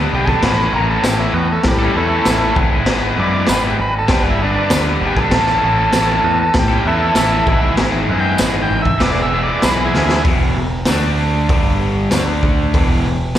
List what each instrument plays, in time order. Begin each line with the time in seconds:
Already playing: overdriven electric guitar B4
0.00 overdriven electric guitar B3 D4
0.11 picked electric bass B1, overdriven electric guitar G3 B3 D4, transistor combo organ G4
0.15 overdriven electric guitar B4
0.25 overdriven electric guitar B3 B4, transistor combo organ G#4 A4, kick
0.31 overdriven electric guitar D4
0.41 picked electric bass A1, overdriven electric guitar A2 A3 C#4 E4, transistor combo organ B4, kick, snare, crash
0.46 overdriven electric guitar A4
0.71 picked electric bass A1, overdriven electric guitar A3 C#4 E4, transistor combo organ A#4
0.76 overdriven electric guitar A4
0.91 transistor combo organ A4
1.02 picked electric bass A1, overdriven electric guitar A2 A3 C#4 E4, transistor combo organ G4, snare, tambourine, crash
1.06 overdriven electric guitar A4
1.17 transistor combo organ E4, overdriven electric guitar E4 A4
1.22 overdriven electric guitar C#4
1.33 picked electric bass E2, transistor combo organ B3, muted overdriven electric guitar stroke
1.52 transistor combo organ A3
1.64 picked electric bass A2, transistor combo organ G3, kick, snare, crash
1.79 overdriven electric guitar E4 A4
1.83 overdriven electric guitar C#4
1.94 picked electric bass E2, transistor combo organ E3 A3, overdriven electric guitar A3 C#4 E4
1.98 overdriven electric guitar A4
2.10 overdriven electric guitar E4 A4
2.14 overdriven electric guitar C#4
2.25 picked electric bass A1, overdriven electric guitar A2 A3 C#4 E4, snare, tambourine, crash
2.29 overdriven electric guitar A4
2.41 overdriven electric guitar C#4 E4 A4
2.56 picked electric bass G#1, overdriven electric guitar G#3 B3 E4, kick
2.61 overdriven electric guitar B4
2.73 overdriven electric guitar E4 B4
2.77 overdriven electric guitar B3
2.86 picked electric bass G#1, overdriven electric guitar G#3 B3 E4, snare, crash
2.91 overdriven electric guitar B4
3.17 picked electric bass F#2, overdriven electric guitar G#3 B3 E4, transistor combo organ D5
3.21 overdriven electric guitar B4
3.47 picked electric bass G#1, overdriven electric guitar G#3 B3 E4, transistor combo organ B4, snare, tambourine, crash
3.52 overdriven electric guitar B4
3.62 overdriven electric guitar E4 B4
3.66 overdriven electric guitar B3, transistor combo organ G4
3.78 picked electric bass G#1, transistor combo organ B4, muted overdriven electric guitar stroke
3.98 transistor combo organ A4
4.08 picked electric bass G1, overdriven electric guitar G3 B3 D4, kick, snare, crash
4.13 transistor combo organ G4, overdriven electric guitar B4
4.23 overdriven electric guitar B3 B4
4.28 overdriven electric guitar D4, transistor combo organ E4
4.40 overdriven electric guitar G3 B3 D4
4.44 transistor combo organ D4, overdriven electric guitar B4
4.55 overdriven electric guitar B3 B4
4.60 overdriven electric guitar D4
4.70 picked electric bass D2, overdriven electric guitar G3 B3 D4, snare, tambourine, crash
4.75 overdriven electric guitar B4
4.86 overdriven electric guitar B3 B4
4.90 overdriven electric guitar D4
5.00 picked electric bass G#1, overdriven electric guitar G3 B3 D4
5.05 transistor combo organ G4, overdriven electric guitar B4
5.16 overdriven electric guitar B3 B4, transistor combo organ G#4, kick
5.20 overdriven electric guitar D4, transistor combo organ A4
5.31 picked electric bass A1, overdriven electric guitar A2 A3 C#4 E4, kick, snare, crash
5.36 overdriven electric guitar A4
5.62 picked electric bass A1, overdriven electric guitar A3 C#4 E4
5.67 overdriven electric guitar A4
5.93 picked electric bass A1, overdriven electric guitar A2 A3 C#4 E4, snare, tambourine, crash
5.97 overdriven electric guitar A4
6.08 overdriven electric guitar E4 A4
6.12 overdriven electric guitar C#4
6.24 picked electric bass E2, muted overdriven electric guitar stroke
6.43 transistor combo organ A4
6.54 picked electric bass A2, kick, snare, crash
6.59 transistor combo organ G4
6.68 overdriven electric guitar E4 A4
6.73 overdriven electric guitar C#4
6.84 picked electric bass E2, overdriven electric guitar A3 C#4 E4, transistor combo organ E4 A4
6.88 overdriven electric guitar A4
7.01 overdriven electric guitar E4 A4
7.05 overdriven electric guitar C#4
7.15 picked electric bass A1, overdriven electric guitar A2 A3 C#4 E4, snare, tambourine, crash
7.20 overdriven electric guitar A4
7.31 overdriven electric guitar E4 A4
7.36 overdriven electric guitar C#4
7.46 picked electric bass G#1, overdriven electric guitar G#2 E3 G#3 B3, kick
7.50 overdriven electric guitar E4 G#4
7.63 overdriven electric guitar B3 E4 G#4
7.67 overdriven electric guitar G#3
7.77 picked electric bass G#1, overdriven electric guitar G#2 E3 G#3 B3 E4, snare, crash
7.81 overdriven electric guitar G#4
8.08 picked electric bass F#2, overdriven electric guitar G#3 B3 E4
8.13 overdriven electric guitar G#4
8.20 transistor combo organ G5
8.38 picked electric bass G#1, overdriven electric guitar G#2 E3 G#3 B3, snare, tambourine, crash
8.42 overdriven electric guitar E4 G#4
8.53 overdriven electric guitar B3 E4 G#4
8.58 overdriven electric guitar G#3
8.62 transistor combo organ G5
8.70 picked electric bass G#1, muted overdriven electric guitar stroke
8.82 transistor combo organ E5, kick
8.98 picked electric bass E1, overdriven electric guitar E2 E3 G#3 B3 E4, transistor combo organ D5, kick, snare, crash
9.03 overdriven electric guitar G#4
9.14 overdriven electric guitar B3 E4 G#4
9.18 overdriven electric guitar G#3
9.23 transistor combo organ E5
9.30 overdriven electric guitar G#3 B3 E4
9.35 overdriven electric guitar G#4
9.43 overdriven electric guitar E4 G#4, transistor combo organ D5
9.48 overdriven electric guitar G#3 B3
9.62 picked electric bass B1, overdriven electric guitar E2 E3 G#3 B3 E4, transistor combo organ B4, snare, tambourine, crash
9.66 overdriven electric guitar G#4
9.77 overdriven electric guitar B3 E4 G#4
9.82 overdriven electric guitar G#3, transistor combo organ E4 G#4
9.93 picked electric bass D2, overdriven electric guitar G#3 B3 E4, snare
9.97 overdriven electric guitar G#4
10.09 overdriven electric guitar B3 E4 G#4, snare
10.13 overdriven electric guitar G#3
10.24 picked electric bass E1, overdriven electric guitar E2 B2 E3, kick, open hi-hat
10.56 picked electric bass E1, overdriven electric guitar E2 B2
10.85 picked electric bass D2, overdriven electric guitar D3 A3 D4, snare, open hi-hat, tambourine
11.49 picked electric bass G1, overdriven electric guitar G2 D3 G3, kick, open hi-hat
12.11 picked electric bass D2, overdriven electric guitar D3 A3 D4, snare, open hi-hat, tambourine
12.43 kick
12.74 picked electric bass E1, overdriven electric guitar E2 B2 E3, kick, open hi-hat
13.05 picked electric bass E1, overdriven electric guitar E2 B2
13.35 snare